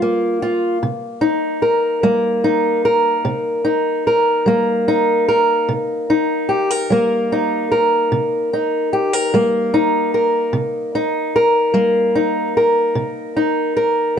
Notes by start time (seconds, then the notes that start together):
Already playing: G3 F4
0.02 A#3
0.42 F4
0.83 C3
1.21 D#4
1.62 A#4
2.03 G3 A#3
2.44 D#4
2.85 A#4
3.25 C3
3.65 D#4
4.07 A#4
4.46 G3 A#3
4.88 D#4
5.28 A#4
5.69 C3
6.10 D#4
6.49 G4
6.71 A#4
6.90 G3 A#3
7.32 D#4
7.72 A#4
8.12 C3
8.53 D#4
8.93 G4
9.13 A#4
9.34 G3 A#3
9.74 D#4
10.14 A#4
10.53 C3
10.95 D#4
11.36 A#4
11.74 G3 A#3
12.15 D#4
12.57 A#4
12.95 C3
13.36 D#4
13.77 A#4